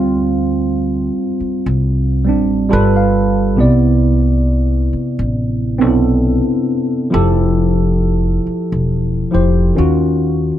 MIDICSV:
0, 0, Header, 1, 4, 480
1, 0, Start_track
1, 0, Tempo, 882353
1, 31, Time_signature, 4, 2, 24, 8
1, 5760, End_track
2, 0, Start_track
2, 0, Title_t, "Tine electric piano"
2, 0, Program_c, 0, 4
2, 0, Control_c, 0, 64, 127
2, 0, Note_on_c, 0, 55, 95
2, 0, Note_on_c, 0, 60, 91
2, 0, Note_on_c, 0, 65, 108
2, 661, Note_off_c, 0, 55, 0
2, 667, Note_off_c, 0, 60, 0
2, 673, Note_off_c, 0, 65, 0
2, 1221, Note_on_c, 0, 55, 78
2, 1233, Note_on_c, 0, 60, 80
2, 1244, Note_on_c, 0, 62, 89
2, 1457, Note_off_c, 0, 55, 0
2, 1463, Note_on_c, 0, 55, 105
2, 1471, Note_on_c, 0, 65, 88
2, 1472, Note_off_c, 0, 60, 0
2, 1473, Note_on_c, 0, 81, 86
2, 1478, Note_off_c, 0, 62, 0
2, 1478, Note_on_c, 0, 69, 91
2, 1479, Control_c, 0, 64, 0
2, 1485, Note_on_c, 0, 71, 114
2, 1573, Control_c, 0, 64, 127
2, 1605, Note_off_c, 0, 81, 0
2, 1612, Note_on_c, 0, 77, 72
2, 1906, Note_off_c, 0, 55, 0
2, 1910, Note_off_c, 0, 65, 0
2, 1913, Note_off_c, 0, 69, 0
2, 1917, Note_off_c, 0, 71, 0
2, 1928, Note_off_c, 0, 77, 0
2, 1940, Note_on_c, 0, 48, 102
2, 1949, Note_on_c, 0, 59, 86
2, 1953, Note_on_c, 0, 64, 91
2, 1959, Control_c, 0, 64, 0
2, 1961, Note_on_c, 0, 74, 105
2, 2043, Control_c, 0, 64, 127
2, 2823, Note_off_c, 0, 48, 0
2, 2828, Note_off_c, 0, 59, 0
2, 2830, Note_off_c, 0, 64, 0
2, 2833, Note_off_c, 0, 74, 0
2, 3146, Note_on_c, 0, 60, 88
2, 3153, Note_on_c, 0, 59, 76
2, 3159, Note_on_c, 0, 62, 61
2, 3165, Note_on_c, 0, 69, 83
2, 3197, Note_off_c, 0, 62, 0
2, 3197, Note_on_c, 0, 64, 80
2, 3807, Note_off_c, 0, 60, 0
2, 3810, Note_off_c, 0, 59, 0
2, 3816, Note_off_c, 0, 69, 0
2, 3832, Note_off_c, 0, 64, 0
2, 3864, Note_on_c, 0, 53, 91
2, 3874, Note_on_c, 0, 64, 88
2, 3878, Control_c, 0, 64, 0
2, 3880, Note_on_c, 0, 67, 80
2, 3886, Note_on_c, 0, 69, 103
2, 3985, Control_c, 0, 64, 127
2, 4745, Note_off_c, 0, 53, 0
2, 4750, Note_off_c, 0, 64, 0
2, 4753, Note_off_c, 0, 67, 0
2, 4756, Note_off_c, 0, 69, 0
2, 5063, Note_on_c, 0, 53, 73
2, 5069, Note_on_c, 0, 64, 71
2, 5078, Note_on_c, 0, 67, 69
2, 5083, Note_on_c, 0, 72, 90
2, 5304, Note_on_c, 0, 51, 98
2, 5307, Note_off_c, 0, 53, 0
2, 5310, Note_off_c, 0, 64, 0
2, 5312, Note_on_c, 0, 61, 88
2, 5315, Note_off_c, 0, 67, 0
2, 5317, Note_off_c, 0, 72, 0
2, 5318, Control_c, 0, 64, 0
2, 5321, Note_on_c, 0, 65, 90
2, 5325, Note_on_c, 0, 66, 106
2, 5428, Control_c, 0, 64, 127
2, 5746, Note_off_c, 0, 51, 0
2, 5750, Note_off_c, 0, 61, 0
2, 5755, Note_off_c, 0, 65, 0
2, 5757, Note_off_c, 0, 66, 0
2, 5760, End_track
3, 0, Start_track
3, 0, Title_t, "Upright bass"
3, 0, Program_c, 1, 32
3, 0, Note_on_c, 1, 38, 92
3, 588, Note_off_c, 1, 38, 0
3, 905, Note_on_c, 1, 36, 92
3, 1242, Note_off_c, 1, 36, 0
3, 1242, Note_on_c, 1, 33, 98
3, 1485, Note_on_c, 1, 31, 105
3, 1493, Note_off_c, 1, 33, 0
3, 1961, Note_off_c, 1, 31, 0
3, 1961, Note_on_c, 1, 36, 110
3, 2654, Note_off_c, 1, 36, 0
3, 2823, Note_on_c, 1, 33, 88
3, 3161, Note_off_c, 1, 33, 0
3, 3161, Note_on_c, 1, 35, 86
3, 3472, Note_off_c, 1, 35, 0
3, 3883, Note_on_c, 1, 29, 110
3, 4575, Note_off_c, 1, 29, 0
3, 4745, Note_on_c, 1, 28, 85
3, 5018, Note_off_c, 1, 28, 0
3, 5083, Note_on_c, 1, 29, 86
3, 5276, Note_off_c, 1, 29, 0
3, 5322, Note_on_c, 1, 39, 93
3, 5712, Note_off_c, 1, 39, 0
3, 5760, End_track
4, 0, Start_track
4, 0, Title_t, "Muted upright bass strokes"
4, 763, Note_on_c, 9, 29, 49
4, 818, Note_off_c, 9, 29, 0
4, 2681, Note_on_c, 9, 29, 51
4, 2736, Note_off_c, 9, 29, 0
4, 4605, Note_on_c, 9, 29, 48
4, 4660, Note_off_c, 9, 29, 0
4, 5760, End_track
0, 0, End_of_file